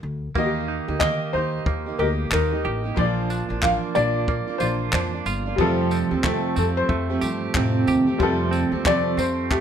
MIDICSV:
0, 0, Header, 1, 7, 480
1, 0, Start_track
1, 0, Key_signature, -2, "major"
1, 0, Tempo, 653595
1, 264, Time_signature, 4, 2, 24, 8
1, 7054, End_track
2, 0, Start_track
2, 0, Title_t, "Felt piano"
2, 0, Program_c, 0, 0
2, 731, Note_on_c, 0, 75, 91
2, 977, Note_on_c, 0, 72, 92
2, 985, Note_off_c, 0, 75, 0
2, 1460, Note_on_c, 0, 70, 81
2, 1475, Note_off_c, 0, 72, 0
2, 1514, Note_off_c, 0, 70, 0
2, 1712, Note_on_c, 0, 70, 75
2, 2066, Note_off_c, 0, 70, 0
2, 2662, Note_on_c, 0, 77, 89
2, 2716, Note_off_c, 0, 77, 0
2, 2900, Note_on_c, 0, 74, 101
2, 3365, Note_on_c, 0, 72, 85
2, 3396, Note_off_c, 0, 74, 0
2, 3604, Note_off_c, 0, 72, 0
2, 3615, Note_on_c, 0, 72, 66
2, 3976, Note_off_c, 0, 72, 0
2, 4589, Note_on_c, 0, 69, 78
2, 4824, Note_off_c, 0, 69, 0
2, 4835, Note_on_c, 0, 69, 81
2, 4872, Note_off_c, 0, 69, 0
2, 4973, Note_on_c, 0, 72, 98
2, 5420, Note_off_c, 0, 72, 0
2, 6511, Note_on_c, 0, 74, 101
2, 6730, Note_off_c, 0, 74, 0
2, 6751, Note_on_c, 0, 72, 85
2, 6970, Note_off_c, 0, 72, 0
2, 6982, Note_on_c, 0, 67, 77
2, 7054, Note_off_c, 0, 67, 0
2, 7054, End_track
3, 0, Start_track
3, 0, Title_t, "Upright piano"
3, 0, Program_c, 1, 0
3, 256, Note_on_c, 1, 58, 71
3, 266, Note_on_c, 1, 66, 52
3, 281, Note_on_c, 1, 75, 77
3, 313, Note_on_c, 1, 67, 60
3, 323, Note_off_c, 1, 66, 0
3, 406, Control_c, 1, 64, 127
3, 1436, Note_off_c, 1, 58, 0
3, 1449, Note_off_c, 1, 75, 0
3, 1455, Note_off_c, 1, 67, 0
3, 1458, Note_on_c, 1, 58, 45
3, 1466, Note_on_c, 1, 67, 41
3, 1471, Note_on_c, 1, 75, 58
3, 2154, Note_off_c, 1, 58, 0
3, 2165, Note_on_c, 1, 58, 69
3, 2179, Note_on_c, 1, 65, 67
3, 2185, Note_off_c, 1, 67, 0
3, 2187, Note_off_c, 1, 75, 0
3, 2194, Control_c, 1, 64, 0
3, 2194, Note_on_c, 1, 74, 78
3, 2301, Control_c, 1, 64, 127
3, 3350, Note_off_c, 1, 58, 0
3, 3357, Note_off_c, 1, 65, 0
3, 3365, Note_off_c, 1, 74, 0
3, 3374, Note_on_c, 1, 58, 48
3, 3378, Note_on_c, 1, 65, 42
3, 3385, Note_on_c, 1, 74, 51
3, 4083, Note_on_c, 1, 55, 75
3, 4090, Note_off_c, 1, 65, 0
3, 4099, Note_off_c, 1, 58, 0
3, 4101, Note_on_c, 1, 65, 68
3, 4104, Note_off_c, 1, 74, 0
3, 4113, Control_c, 1, 64, 0
3, 4117, Note_on_c, 1, 69, 85
3, 4219, Control_c, 1, 64, 127
3, 5983, Note_off_c, 1, 55, 0
3, 5992, Note_off_c, 1, 65, 0
3, 6000, Note_off_c, 1, 69, 0
3, 6008, Note_on_c, 1, 55, 77
3, 6026, Note_on_c, 1, 65, 68
3, 6043, Note_on_c, 1, 69, 83
3, 7054, Note_off_c, 1, 55, 0
3, 7054, Note_off_c, 1, 65, 0
3, 7054, Note_off_c, 1, 69, 0
3, 7054, End_track
4, 0, Start_track
4, 0, Title_t, "Clean electric guitar"
4, 0, Program_c, 2, 27
4, 501, Note_on_c, 2, 63, 62
4, 976, Note_off_c, 2, 63, 0
4, 1223, Note_on_c, 2, 58, 59
4, 1945, Note_on_c, 2, 67, 60
4, 2242, Note_off_c, 2, 67, 0
4, 2425, Note_on_c, 2, 62, 59
4, 2666, Note_off_c, 2, 58, 0
4, 2899, Note_off_c, 2, 62, 0
4, 3147, Note_on_c, 2, 58, 62
4, 3865, Note_on_c, 2, 65, 69
4, 4163, Note_off_c, 2, 58, 0
4, 4344, Note_on_c, 2, 60, 59
4, 4815, Note_off_c, 2, 60, 0
4, 5059, Note_on_c, 2, 57, 68
4, 5295, Note_off_c, 2, 65, 0
4, 5298, Note_on_c, 2, 67, 63
4, 5784, Note_off_c, 2, 67, 0
4, 5787, Note_on_c, 2, 67, 70
4, 6252, Note_on_c, 2, 60, 68
4, 6487, Note_off_c, 2, 57, 0
4, 6738, Note_off_c, 2, 60, 0
4, 6987, Note_on_c, 2, 57, 69
4, 7054, Note_off_c, 2, 57, 0
4, 7054, Note_off_c, 2, 67, 0
4, 7054, End_track
5, 0, Start_track
5, 0, Title_t, "Steel-string acoustic guitar"
5, 0, Program_c, 3, 25
5, 264, Note_on_c, 3, 51, 66
5, 266, Note_on_c, 3, 58, 83
5, 275, Note_on_c, 3, 63, 88
5, 278, Note_on_c, 3, 67, 88
5, 637, Note_off_c, 3, 67, 0
5, 646, Note_on_c, 3, 67, 49
5, 648, Note_off_c, 3, 51, 0
5, 648, Note_off_c, 3, 63, 0
5, 649, Note_off_c, 3, 58, 0
5, 657, Note_on_c, 3, 63, 45
5, 666, Note_on_c, 3, 58, 39
5, 740, Note_off_c, 3, 58, 0
5, 743, Note_off_c, 3, 63, 0
5, 743, Note_off_c, 3, 67, 0
5, 744, Note_on_c, 3, 51, 71
5, 749, Note_on_c, 3, 58, 71
5, 752, Note_on_c, 3, 63, 67
5, 756, Note_on_c, 3, 67, 76
5, 977, Note_off_c, 3, 51, 0
5, 983, Note_off_c, 3, 58, 0
5, 985, Note_on_c, 3, 51, 59
5, 988, Note_off_c, 3, 63, 0
5, 990, Note_off_c, 3, 67, 0
5, 992, Note_on_c, 3, 58, 54
5, 999, Note_on_c, 3, 63, 68
5, 1002, Note_on_c, 3, 67, 60
5, 1359, Note_off_c, 3, 67, 0
5, 1368, Note_on_c, 3, 67, 47
5, 1369, Note_off_c, 3, 51, 0
5, 1372, Note_off_c, 3, 58, 0
5, 1373, Note_off_c, 3, 63, 0
5, 1382, Note_on_c, 3, 63, 45
5, 1387, Note_on_c, 3, 58, 39
5, 1462, Note_off_c, 3, 58, 0
5, 1464, Note_off_c, 3, 67, 0
5, 1471, Note_off_c, 3, 63, 0
5, 1471, Note_on_c, 3, 58, 58
5, 1479, Note_on_c, 3, 63, 55
5, 1486, Note_on_c, 3, 67, 55
5, 1700, Note_off_c, 3, 58, 0
5, 1705, Note_on_c, 3, 51, 75
5, 1708, Note_off_c, 3, 63, 0
5, 1709, Note_on_c, 3, 58, 75
5, 1712, Note_off_c, 3, 67, 0
5, 1717, Note_on_c, 3, 63, 73
5, 1721, Note_on_c, 3, 67, 77
5, 1842, Note_off_c, 3, 67, 0
5, 1849, Note_off_c, 3, 51, 0
5, 1851, Note_off_c, 3, 58, 0
5, 1851, Note_on_c, 3, 67, 47
5, 1853, Note_off_c, 3, 63, 0
5, 1861, Note_on_c, 3, 63, 45
5, 1872, Note_on_c, 3, 58, 39
5, 2074, Note_off_c, 3, 67, 0
5, 2083, Note_on_c, 3, 67, 51
5, 2086, Note_off_c, 3, 63, 0
5, 2093, Note_off_c, 3, 58, 0
5, 2095, Note_on_c, 3, 63, 44
5, 2102, Note_on_c, 3, 58, 39
5, 2174, Note_off_c, 3, 58, 0
5, 2174, Note_on_c, 3, 46, 83
5, 2181, Note_off_c, 3, 67, 0
5, 2181, Note_on_c, 3, 53, 78
5, 2182, Note_on_c, 3, 58, 75
5, 2185, Note_off_c, 3, 63, 0
5, 2188, Note_on_c, 3, 62, 82
5, 2190, Note_on_c, 3, 65, 82
5, 2552, Note_off_c, 3, 65, 0
5, 2561, Note_on_c, 3, 65, 53
5, 2563, Note_off_c, 3, 46, 0
5, 2567, Note_off_c, 3, 53, 0
5, 2567, Note_off_c, 3, 58, 0
5, 2567, Note_off_c, 3, 62, 0
5, 2576, Note_on_c, 3, 62, 47
5, 2581, Note_on_c, 3, 58, 39
5, 2653, Note_off_c, 3, 58, 0
5, 2655, Note_on_c, 3, 46, 64
5, 2659, Note_off_c, 3, 62, 0
5, 2660, Note_off_c, 3, 65, 0
5, 2662, Note_on_c, 3, 58, 68
5, 2663, Note_on_c, 3, 53, 76
5, 2668, Note_on_c, 3, 62, 77
5, 2672, Note_on_c, 3, 65, 77
5, 2894, Note_off_c, 3, 53, 0
5, 2899, Note_off_c, 3, 46, 0
5, 2899, Note_off_c, 3, 58, 0
5, 2903, Note_on_c, 3, 53, 61
5, 2906, Note_off_c, 3, 62, 0
5, 2908, Note_off_c, 3, 65, 0
5, 2908, Note_on_c, 3, 58, 62
5, 2916, Note_on_c, 3, 62, 65
5, 2922, Note_on_c, 3, 65, 67
5, 3277, Note_off_c, 3, 65, 0
5, 3286, Note_on_c, 3, 65, 48
5, 3287, Note_off_c, 3, 53, 0
5, 3290, Note_off_c, 3, 58, 0
5, 3292, Note_off_c, 3, 62, 0
5, 3301, Note_on_c, 3, 62, 51
5, 3308, Note_on_c, 3, 58, 39
5, 3379, Note_off_c, 3, 58, 0
5, 3383, Note_off_c, 3, 65, 0
5, 3383, Note_on_c, 3, 53, 55
5, 3385, Note_off_c, 3, 62, 0
5, 3388, Note_on_c, 3, 58, 57
5, 3393, Note_on_c, 3, 62, 63
5, 3401, Note_on_c, 3, 65, 55
5, 3612, Note_off_c, 3, 53, 0
5, 3616, Note_off_c, 3, 58, 0
5, 3616, Note_on_c, 3, 46, 67
5, 3620, Note_off_c, 3, 65, 0
5, 3620, Note_on_c, 3, 53, 80
5, 3621, Note_off_c, 3, 62, 0
5, 3625, Note_on_c, 3, 58, 73
5, 3629, Note_on_c, 3, 65, 79
5, 3630, Note_on_c, 3, 62, 91
5, 3757, Note_off_c, 3, 65, 0
5, 3764, Note_off_c, 3, 46, 0
5, 3766, Note_off_c, 3, 53, 0
5, 3766, Note_on_c, 3, 65, 44
5, 3768, Note_off_c, 3, 58, 0
5, 3768, Note_off_c, 3, 62, 0
5, 3777, Note_on_c, 3, 62, 45
5, 3783, Note_on_c, 3, 58, 37
5, 4000, Note_off_c, 3, 65, 0
5, 4009, Note_on_c, 3, 65, 53
5, 4010, Note_off_c, 3, 62, 0
5, 4015, Note_off_c, 3, 58, 0
5, 4018, Note_on_c, 3, 62, 45
5, 4028, Note_on_c, 3, 58, 43
5, 4102, Note_on_c, 3, 41, 85
5, 4104, Note_off_c, 3, 65, 0
5, 4106, Note_on_c, 3, 48, 73
5, 4109, Note_off_c, 3, 58, 0
5, 4109, Note_off_c, 3, 62, 0
5, 4111, Note_on_c, 3, 53, 90
5, 4112, Note_on_c, 3, 57, 78
5, 4115, Note_on_c, 3, 67, 85
5, 4118, Note_on_c, 3, 60, 86
5, 4477, Note_off_c, 3, 67, 0
5, 4485, Note_on_c, 3, 67, 50
5, 4487, Note_off_c, 3, 41, 0
5, 4489, Note_off_c, 3, 48, 0
5, 4489, Note_off_c, 3, 60, 0
5, 4491, Note_off_c, 3, 53, 0
5, 4492, Note_off_c, 3, 57, 0
5, 4498, Note_on_c, 3, 60, 47
5, 4501, Note_on_c, 3, 57, 44
5, 4509, Note_on_c, 3, 53, 41
5, 4577, Note_off_c, 3, 53, 0
5, 4577, Note_on_c, 3, 41, 71
5, 4580, Note_off_c, 3, 57, 0
5, 4581, Note_off_c, 3, 60, 0
5, 4581, Note_on_c, 3, 48, 71
5, 4582, Note_off_c, 3, 67, 0
5, 4585, Note_on_c, 3, 53, 81
5, 4589, Note_on_c, 3, 57, 74
5, 4589, Note_on_c, 3, 60, 82
5, 4596, Note_on_c, 3, 67, 76
5, 4813, Note_off_c, 3, 53, 0
5, 4820, Note_off_c, 3, 41, 0
5, 4822, Note_off_c, 3, 48, 0
5, 4822, Note_on_c, 3, 53, 60
5, 4823, Note_off_c, 3, 57, 0
5, 4826, Note_off_c, 3, 60, 0
5, 4830, Note_off_c, 3, 67, 0
5, 4832, Note_on_c, 3, 57, 66
5, 4837, Note_on_c, 3, 60, 66
5, 4845, Note_on_c, 3, 67, 64
5, 5204, Note_off_c, 3, 67, 0
5, 5207, Note_off_c, 3, 53, 0
5, 5210, Note_off_c, 3, 60, 0
5, 5211, Note_off_c, 3, 57, 0
5, 5213, Note_on_c, 3, 67, 51
5, 5218, Note_on_c, 3, 60, 53
5, 5224, Note_on_c, 3, 57, 44
5, 5230, Note_on_c, 3, 53, 42
5, 5300, Note_off_c, 3, 53, 0
5, 5305, Note_off_c, 3, 57, 0
5, 5306, Note_off_c, 3, 67, 0
5, 5309, Note_off_c, 3, 60, 0
5, 5309, Note_on_c, 3, 53, 59
5, 5314, Note_on_c, 3, 57, 64
5, 5320, Note_on_c, 3, 60, 65
5, 5332, Note_on_c, 3, 67, 70
5, 5539, Note_on_c, 3, 41, 77
5, 5541, Note_off_c, 3, 53, 0
5, 5543, Note_off_c, 3, 57, 0
5, 5543, Note_off_c, 3, 60, 0
5, 5544, Note_on_c, 3, 48, 92
5, 5548, Note_off_c, 3, 67, 0
5, 5549, Note_on_c, 3, 53, 92
5, 5552, Note_on_c, 3, 57, 83
5, 5552, Note_on_c, 3, 60, 93
5, 5557, Note_on_c, 3, 67, 90
5, 5917, Note_off_c, 3, 67, 0
5, 5924, Note_off_c, 3, 60, 0
5, 5925, Note_off_c, 3, 41, 0
5, 5926, Note_on_c, 3, 67, 60
5, 5927, Note_off_c, 3, 48, 0
5, 5930, Note_off_c, 3, 53, 0
5, 5930, Note_off_c, 3, 57, 0
5, 5933, Note_on_c, 3, 60, 51
5, 5938, Note_on_c, 3, 57, 50
5, 5946, Note_on_c, 3, 53, 47
5, 6022, Note_off_c, 3, 67, 0
5, 6026, Note_off_c, 3, 60, 0
5, 6027, Note_off_c, 3, 53, 0
5, 6028, Note_off_c, 3, 57, 0
5, 6029, Note_on_c, 3, 41, 68
5, 6031, Note_on_c, 3, 48, 88
5, 6036, Note_on_c, 3, 53, 81
5, 6037, Note_on_c, 3, 57, 85
5, 6039, Note_on_c, 3, 67, 86
5, 6040, Note_on_c, 3, 60, 91
5, 6399, Note_off_c, 3, 67, 0
5, 6404, Note_off_c, 3, 60, 0
5, 6408, Note_on_c, 3, 67, 50
5, 6410, Note_off_c, 3, 41, 0
5, 6411, Note_off_c, 3, 48, 0
5, 6413, Note_off_c, 3, 53, 0
5, 6413, Note_on_c, 3, 60, 51
5, 6414, Note_off_c, 3, 57, 0
5, 6423, Note_on_c, 3, 57, 44
5, 6429, Note_on_c, 3, 53, 45
5, 6502, Note_off_c, 3, 53, 0
5, 6503, Note_off_c, 3, 57, 0
5, 6503, Note_off_c, 3, 67, 0
5, 6503, Note_on_c, 3, 41, 68
5, 6505, Note_off_c, 3, 60, 0
5, 6506, Note_on_c, 3, 48, 77
5, 6511, Note_on_c, 3, 53, 70
5, 6511, Note_on_c, 3, 57, 80
5, 6513, Note_on_c, 3, 60, 73
5, 6517, Note_on_c, 3, 67, 74
5, 6730, Note_off_c, 3, 53, 0
5, 6739, Note_on_c, 3, 53, 60
5, 6740, Note_off_c, 3, 57, 0
5, 6742, Note_off_c, 3, 41, 0
5, 6744, Note_off_c, 3, 48, 0
5, 6745, Note_off_c, 3, 60, 0
5, 6749, Note_off_c, 3, 67, 0
5, 6749, Note_on_c, 3, 57, 62
5, 6754, Note_on_c, 3, 60, 70
5, 6760, Note_on_c, 3, 67, 65
5, 7054, Note_off_c, 3, 53, 0
5, 7054, Note_off_c, 3, 57, 0
5, 7054, Note_off_c, 3, 60, 0
5, 7054, Note_off_c, 3, 67, 0
5, 7054, End_track
6, 0, Start_track
6, 0, Title_t, "Upright bass"
6, 0, Program_c, 4, 32
6, 22, Note_on_c, 4, 38, 89
6, 220, Note_off_c, 4, 38, 0
6, 259, Note_on_c, 4, 39, 83
6, 576, Note_off_c, 4, 39, 0
6, 648, Note_on_c, 4, 38, 85
6, 845, Note_off_c, 4, 38, 0
6, 983, Note_on_c, 4, 39, 80
6, 1180, Note_off_c, 4, 39, 0
6, 1220, Note_on_c, 4, 39, 92
6, 1419, Note_off_c, 4, 39, 0
6, 1462, Note_on_c, 4, 38, 100
6, 1660, Note_off_c, 4, 38, 0
6, 1703, Note_on_c, 4, 39, 89
6, 1945, Note_on_c, 4, 33, 94
6, 1956, Note_off_c, 4, 39, 0
6, 2142, Note_off_c, 4, 33, 0
6, 2184, Note_on_c, 4, 34, 101
6, 2499, Note_off_c, 4, 34, 0
6, 2570, Note_on_c, 4, 33, 86
6, 2766, Note_off_c, 4, 33, 0
6, 2906, Note_on_c, 4, 34, 99
6, 3220, Note_off_c, 4, 34, 0
6, 3381, Note_on_c, 4, 34, 93
6, 3579, Note_off_c, 4, 34, 0
6, 3623, Note_on_c, 4, 41, 85
6, 3820, Note_off_c, 4, 41, 0
6, 3859, Note_on_c, 4, 31, 84
6, 4058, Note_off_c, 4, 31, 0
6, 4103, Note_on_c, 4, 41, 98
6, 4418, Note_off_c, 4, 41, 0
6, 4488, Note_on_c, 4, 39, 84
6, 4684, Note_off_c, 4, 39, 0
6, 4823, Note_on_c, 4, 41, 81
6, 5020, Note_off_c, 4, 41, 0
6, 5061, Note_on_c, 4, 41, 90
6, 5259, Note_off_c, 4, 41, 0
6, 5303, Note_on_c, 4, 43, 89
6, 5500, Note_off_c, 4, 43, 0
6, 5542, Note_on_c, 4, 45, 99
6, 5739, Note_off_c, 4, 45, 0
6, 5780, Note_on_c, 4, 39, 83
6, 5978, Note_off_c, 4, 39, 0
6, 6022, Note_on_c, 4, 41, 114
6, 6337, Note_off_c, 4, 41, 0
6, 6402, Note_on_c, 4, 39, 84
6, 6600, Note_off_c, 4, 39, 0
6, 6737, Note_on_c, 4, 41, 96
6, 7054, Note_off_c, 4, 41, 0
6, 7054, End_track
7, 0, Start_track
7, 0, Title_t, "Drums"
7, 260, Note_on_c, 9, 36, 98
7, 333, Note_off_c, 9, 36, 0
7, 740, Note_on_c, 9, 36, 100
7, 740, Note_on_c, 9, 39, 102
7, 813, Note_off_c, 9, 39, 0
7, 814, Note_off_c, 9, 36, 0
7, 1221, Note_on_c, 9, 36, 106
7, 1294, Note_off_c, 9, 36, 0
7, 1699, Note_on_c, 9, 39, 99
7, 1701, Note_on_c, 9, 36, 95
7, 1773, Note_off_c, 9, 39, 0
7, 1775, Note_off_c, 9, 36, 0
7, 2184, Note_on_c, 9, 36, 91
7, 2257, Note_off_c, 9, 36, 0
7, 2423, Note_on_c, 9, 54, 47
7, 2497, Note_off_c, 9, 54, 0
7, 2662, Note_on_c, 9, 39, 94
7, 2663, Note_on_c, 9, 36, 103
7, 2735, Note_off_c, 9, 39, 0
7, 2736, Note_off_c, 9, 36, 0
7, 2902, Note_on_c, 9, 54, 60
7, 2976, Note_off_c, 9, 54, 0
7, 3143, Note_on_c, 9, 36, 104
7, 3217, Note_off_c, 9, 36, 0
7, 3379, Note_on_c, 9, 54, 60
7, 3452, Note_off_c, 9, 54, 0
7, 3618, Note_on_c, 9, 39, 99
7, 3622, Note_on_c, 9, 36, 100
7, 3691, Note_off_c, 9, 39, 0
7, 3695, Note_off_c, 9, 36, 0
7, 3862, Note_on_c, 9, 54, 56
7, 3936, Note_off_c, 9, 54, 0
7, 4101, Note_on_c, 9, 36, 99
7, 4174, Note_off_c, 9, 36, 0
7, 4341, Note_on_c, 9, 54, 50
7, 4414, Note_off_c, 9, 54, 0
7, 4582, Note_on_c, 9, 36, 100
7, 4582, Note_on_c, 9, 39, 95
7, 4655, Note_off_c, 9, 36, 0
7, 4655, Note_off_c, 9, 39, 0
7, 4820, Note_on_c, 9, 54, 68
7, 4894, Note_off_c, 9, 54, 0
7, 5061, Note_on_c, 9, 36, 99
7, 5134, Note_off_c, 9, 36, 0
7, 5298, Note_on_c, 9, 54, 64
7, 5372, Note_off_c, 9, 54, 0
7, 5541, Note_on_c, 9, 36, 98
7, 5543, Note_on_c, 9, 39, 108
7, 5615, Note_off_c, 9, 36, 0
7, 5616, Note_off_c, 9, 39, 0
7, 5783, Note_on_c, 9, 54, 56
7, 5857, Note_off_c, 9, 54, 0
7, 6021, Note_on_c, 9, 36, 99
7, 6095, Note_off_c, 9, 36, 0
7, 6261, Note_on_c, 9, 54, 51
7, 6334, Note_off_c, 9, 54, 0
7, 6503, Note_on_c, 9, 36, 104
7, 6505, Note_on_c, 9, 39, 97
7, 6576, Note_off_c, 9, 36, 0
7, 6578, Note_off_c, 9, 39, 0
7, 6746, Note_on_c, 9, 54, 72
7, 6819, Note_off_c, 9, 54, 0
7, 6983, Note_on_c, 9, 36, 107
7, 6986, Note_on_c, 9, 39, 88
7, 7054, Note_off_c, 9, 36, 0
7, 7054, Note_off_c, 9, 39, 0
7, 7054, End_track
0, 0, End_of_file